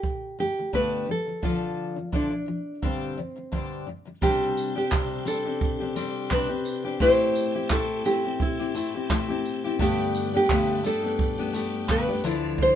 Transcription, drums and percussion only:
0.03 kick
0.73 kick
1.43 kick
2.13 kick
2.83 kick
3.53 kick
4.22 kick
4.57 tambourine
4.92 kick, clap
5.27 tambourine
5.61 kick
5.96 tambourine
6.31 kick, clap
6.65 tambourine
7.00 kick
7.35 tambourine
7.70 kick, clap
8.05 tambourine
8.40 kick
8.75 tambourine
9.10 kick, clap
9.45 tambourine
9.79 kick
10.15 tambourine
10.49 kick, clap
10.84 tambourine
11.19 kick
11.54 tambourine
11.89 kick, clap
12.24 tambourine
12.58 kick

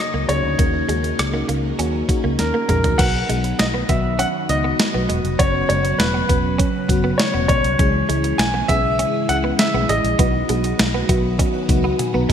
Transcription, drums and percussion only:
0.29 closed hi-hat
0.59 kick, closed hi-hat
0.89 closed hi-hat
1.04 closed hi-hat
1.19 cross-stick, closed hi-hat
1.49 closed hi-hat
1.79 closed hi-hat
2.09 kick, closed hi-hat
2.39 snare, closed hi-hat
2.69 closed hi-hat, mid tom
2.84 closed hi-hat, floor tom
2.99 kick, closed hi-hat, crash
3.30 closed hi-hat
3.44 closed hi-hat
3.59 snare, closed hi-hat
3.89 kick, closed hi-hat
4.19 closed hi-hat
4.49 closed hi-hat
4.79 snare, closed hi-hat
5.10 closed hi-hat
5.25 closed hi-hat
5.39 kick, closed hi-hat
5.70 closed hi-hat
5.85 closed hi-hat
6.00 snare, closed hi-hat
6.29 kick, closed hi-hat
6.59 kick, closed hi-hat
6.89 kick, closed hi-hat
7.19 snare, closed hi-hat
7.49 kick, closed hi-hat
7.64 closed hi-hat
7.79 kick, closed hi-hat
8.10 closed hi-hat
8.24 closed hi-hat
8.39 snare, closed hi-hat
8.69 kick, closed hi-hat
8.99 closed hi-hat
9.29 closed hi-hat
9.59 snare, closed hi-hat
9.89 closed hi-hat
10.05 closed hi-hat
10.19 kick, closed hi-hat
10.49 closed hi-hat
10.64 closed hi-hat
10.79 snare, closed hi-hat
11.09 kick, closed hi-hat
11.39 kick, closed hi-hat
11.69 kick, closed hi-hat
11.99 closed hi-hat, high tom
12.30 mid tom, open hi-hat

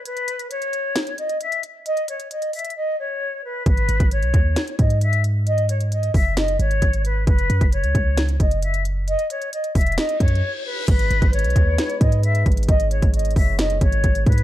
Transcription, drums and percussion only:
0.05 closed hi-hat
0.17 closed hi-hat
0.28 closed hi-hat
0.39 closed hi-hat
0.51 closed hi-hat
0.62 closed hi-hat
0.73 closed hi-hat
0.96 snare, closed hi-hat
1.07 closed hi-hat
1.18 closed hi-hat
1.29 closed hi-hat
1.41 closed hi-hat
1.52 closed hi-hat
1.63 closed hi-hat
1.86 closed hi-hat
1.97 closed hi-hat
2.08 closed hi-hat
2.20 closed hi-hat
2.31 closed hi-hat
2.42 closed hi-hat
2.53 closed hi-hat, open hi-hat
2.59 closed hi-hat
2.65 closed hi-hat
2.70 closed hi-hat
3.66 kick, closed hi-hat
3.77 closed hi-hat
3.89 closed hi-hat
4.00 kick, closed hi-hat
4.11 closed hi-hat
4.23 closed hi-hat
4.34 kick, closed hi-hat
4.56 snare, closed hi-hat
4.68 closed hi-hat
4.79 kick, closed hi-hat
4.90 closed hi-hat
5.01 closed hi-hat
5.13 closed hi-hat
5.24 closed hi-hat
5.47 closed hi-hat
5.58 closed hi-hat
5.69 closed hi-hat
5.81 closed hi-hat
5.92 closed hi-hat
6.03 closed hi-hat
6.14 kick, open hi-hat
6.37 snare, closed hi-hat
6.48 closed hi-hat
6.60 closed hi-hat
6.71 closed hi-hat
6.82 kick, closed hi-hat
6.93 closed hi-hat
7.05 closed hi-hat
7.27 kick, closed hi-hat
7.38 closed hi-hat
7.50 closed hi-hat
7.61 kick, closed hi-hat
7.72 closed hi-hat
7.84 closed hi-hat
7.95 kick, closed hi-hat
8.17 snare, closed hi-hat
8.29 closed hi-hat
8.40 kick, closed hi-hat
8.51 closed hi-hat
8.62 closed hi-hat
8.74 closed hi-hat
8.85 closed hi-hat
9.08 closed hi-hat
9.19 closed hi-hat
9.30 closed hi-hat
9.42 closed hi-hat
9.53 closed hi-hat
9.64 closed hi-hat
9.75 kick, closed hi-hat, open hi-hat
9.81 closed hi-hat
9.87 closed hi-hat
9.92 closed hi-hat
9.98 snare, closed hi-hat
10.09 closed hi-hat
10.20 kick, closed hi-hat
10.28 closed hi-hat
10.35 closed hi-hat
10.88 kick, closed hi-hat, crash
10.99 closed hi-hat
11.11 closed hi-hat
11.22 kick, closed hi-hat
11.33 closed hi-hat
11.39 closed hi-hat
11.44 closed hi-hat
11.50 closed hi-hat
11.56 kick, closed hi-hat
11.78 snare, closed hi-hat
11.90 closed hi-hat
12.01 kick, closed hi-hat
12.12 closed hi-hat
12.23 closed hi-hat
12.35 closed hi-hat
12.46 kick, closed hi-hat
12.52 closed hi-hat
12.57 closed hi-hat
12.63 closed hi-hat
12.69 kick, closed hi-hat
12.80 closed hi-hat
12.91 closed hi-hat
13.02 kick, closed hi-hat
13.14 closed hi-hat
13.19 closed hi-hat
13.25 closed hi-hat
13.31 closed hi-hat
13.36 kick, open hi-hat
13.59 snare, closed hi-hat
13.70 closed hi-hat
13.81 kick, closed hi-hat
13.92 closed hi-hat
14.04 kick, closed hi-hat
14.15 closed hi-hat
14.26 kick, closed hi-hat
14.32 closed hi-hat
14.38 closed hi-hat

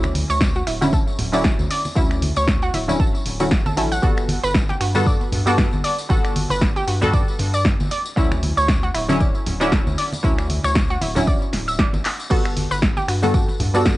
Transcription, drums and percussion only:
0.03 finger snap, tambourine, muted conga
0.15 open hi-hat, high conga
0.30 tambourine
0.41 kick, snare, tambourine
0.56 tambourine, muted conga
0.67 finger snap, open hi-hat
0.82 tambourine, high conga
0.93 kick, tambourine, muted conga
1.08 tambourine
1.19 open hi-hat, low conga
1.33 tambourine
1.44 kick, snare, tambourine, muted conga
1.59 tambourine, high conga
1.71 open hi-hat
1.85 tambourine, muted conga
1.96 kick, tambourine
2.11 finger snap, tambourine
2.22 open hi-hat, high conga
2.36 tambourine, muted conga
2.48 kick, snare, tambourine
2.62 tambourine
2.74 open hi-hat, muted conga
2.88 tambourine, high conga, low conga
3.00 kick, tambourine
3.15 tambourine
3.26 open hi-hat, muted conga
3.40 tambourine
3.51 kick, snare, tambourine
3.66 tambourine, muted conga, high conga
3.77 open hi-hat
3.92 tambourine
4.03 kick, tambourine
4.17 finger snap, tambourine
4.29 open hi-hat, muted conga, high conga
4.44 tambourine
4.54 kick, snare, tambourine
4.69 tambourine, muted conga
4.81 finger snap, open hi-hat
4.95 tambourine, high conga
5.07 kick, tambourine
5.21 tambourine, muted conga
5.32 open hi-hat, low conga
5.47 tambourine
5.58 kick, snare, tambourine, muted conga
5.73 tambourine, high conga
5.84 open hi-hat
5.99 tambourine
6.10 kick, tambourine, muted conga
6.25 finger snap, tambourine
6.36 open hi-hat, high conga
6.50 tambourine, muted conga
6.61 kick, snare, tambourine
6.76 tambourine
6.88 open hi-hat
7.02 tambourine, muted conga, high conga, low conga
7.13 kick, tambourine
7.28 tambourine
7.39 open hi-hat, muted conga
7.54 tambourine
7.65 kick, snare
7.80 tambourine, high conga
7.91 open hi-hat, muted conga
8.05 tambourine
8.17 kick, tambourine
8.32 finger snap, tambourine, muted conga
8.43 open hi-hat, high conga
8.58 tambourine
8.68 kick, snare, tambourine
8.83 tambourine, muted conga
8.95 finger snap, open hi-hat
9.09 tambourine, high conga
9.20 kick, tambourine, muted conga
9.35 tambourine
9.46 open hi-hat, low conga
9.61 tambourine
9.72 kick, snare, tambourine, muted conga
9.87 tambourine, high conga
9.98 open hi-hat
10.12 tambourine, muted conga
10.24 kick, tambourine
10.38 finger snap, tambourine
10.50 open hi-hat, high conga
10.64 finger snap, tambourine, muted conga
10.75 kick, snare, tambourine
10.90 tambourine
11.01 open hi-hat, muted conga
11.16 tambourine, high conga, low conga
11.27 kick, tambourine
11.42 tambourine
11.53 snare, open hi-hat, muted conga
11.68 tambourine
11.79 kick, snare, tambourine
11.93 tambourine, muted conga, high conga
12.05 clap, open hi-hat
12.20 tambourine
12.30 kick, crash, tambourine
12.45 finger snap, tambourine
12.57 open hi-hat, muted conga, high conga
12.71 tambourine
12.82 kick, snare, tambourine
12.97 tambourine, muted conga
13.09 finger snap, open hi-hat
13.23 tambourine, high conga
13.34 kick, tambourine
13.49 tambourine, muted conga
13.60 open hi-hat, low conga
13.74 tambourine
13.85 kick, snare, tambourine, muted conga

